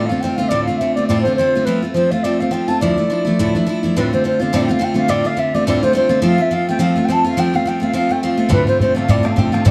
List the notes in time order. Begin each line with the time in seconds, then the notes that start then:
Already playing: A3 C4
0.06 F4 F5
0.11 D3 A3 C4
0.21 D3 A3 C4 G5
0.25 F4
0.36 A3 C4 F4 F5
0.41 D3
0.48 D2 A2 D3 A3 C4 F4 D5
0.64 F4 F5
0.68 D3 A3 C4
0.77 D3 C4 E5
0.82 A3 F4
0.95 A3 C4 F4 D5
0.99 D3
1.08 D2 A2 D3 A3 C4 F4 D5
1.22 A3 F4 C5
1.27 D3 C4
1.35 D3 C5
1.39 A3 C4 F4
1.55 D3 A3 C4 F4
1.65 F3 A3 C4 F4 B4
1.82 A3 C4 F4
1.94 F3 A3 C4 F4 C5
2.11 A3 C4 F4 F5
2.23 F3 A3 C4 F4 D5
2.39 A3 C4 F4 F5
2.51 F3 A3 C4 F4 G5
2.68 A3 C4 F4 A5
2.80 D2 A2 F3 A3 D4 E4 D5
2.98 F3 A3 D4 E4
3.10 F3 A3 D4 E4
3.25 F3 A3 D4 E4
3.39 D2 A2 F3 A3 D4 E4
3.55 F3 A3 D4 E4
3.66 F3 A3 D4 E4
3.83 F3 A3 D4 E4
3.96 D2 A2 D3 A3 C4 F4 B4
4.13 D3 A3 C4 F4 C5
4.24 D3 A3 C4 F4 C5
4.40 D3 A3 C4 F4 F5
4.53 D2 A2 D3 A3 C4 F4 D5
4.64 F4 G5
4.69 D3 A3 C4 F5
4.79 D3 A3 C4 F4
4.84 G5
4.94 D3 A3 C4 F4 F5
5.08 D2 A2 D3 A3 C4 F4 D5
5.24 D3 A3 C4 F4 F5
5.37 D3 A3 C4 F4 E5
5.54 D3 A3 C4 F4 D5
5.67 D2 A2 D3 A3 C4 F4 D5
5.83 D3 A3 C4 F4 C5
5.93 D3 A3 C4 F4 C5
6.09 D3 A3 C4 F4
6.22 F3 A3 C4 F4 F5
6.38 A3 C4 F4 E5
6.51 F3 A3 C4 F4 F5
6.69 A3 C4 F4 G5
6.79 F3 A3 C4 F4 F5
6.96 A3 C4 F4
7.05 F3 G5
7.09 A3 C4 F4 A5
7.24 A3 C4 F4 F5
7.37 F3 A3 C4 F4 G5
7.54 A3 C4 F4 F5
7.66 F3 A3 C4 F4 G5
7.80 A3 C4 F4 F5
7.93 F3 A3 C4 F4 F5
8.09 A3 C4 F4 G5
8.23 F3 A3 C4 F4 F5
8.37 A3 C4 F4
8.49 D2 A2 D3 A3 C4 F4 B4, bodhran
8.67 D3 A3 C4 F4 C5
8.80 D3 A3 C4 F4 C5, bodhran
8.95 D3 A3 C4 F4 F5, bodhran
9.08 D2 A2 D3 A3 C4 F4 D5, bodhran
9.23 D3 A3 C4 F4 F5, bodhran
9.36 D3 A3 C4 F4 G5, bodhran
9.52 D3 A3 C4 F4 F5, bodhran
9.65 D2 A2 D3 A3 C4 F4 D5, bodhran